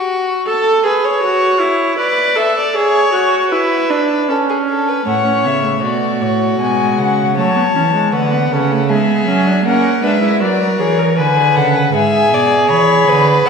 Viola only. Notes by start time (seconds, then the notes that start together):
0.46 A4
0.83 G#4
1.22 F#4
1.60 E4
1.98 B4
2.35 A4
2.75 G#4
3.12 F#4
3.52 E4
3.90 D4
4.28 C#4
5.05 A3
5.24 C#4
5.44 B3
5.63 A3
6.60 G#3
7.37 A3
7.56 B3
7.75 C#4
7.93 G#3
8.13 A3
8.32 B3
8.53 C#4
8.72 A3
8.90 B3
9.28 C#4
9.47 D4
9.66 C#4
10.03 D4
10.22 E4
10.40 F#4
10.79 G#4
10.99 A#4
11.18 B4
11.95 G#4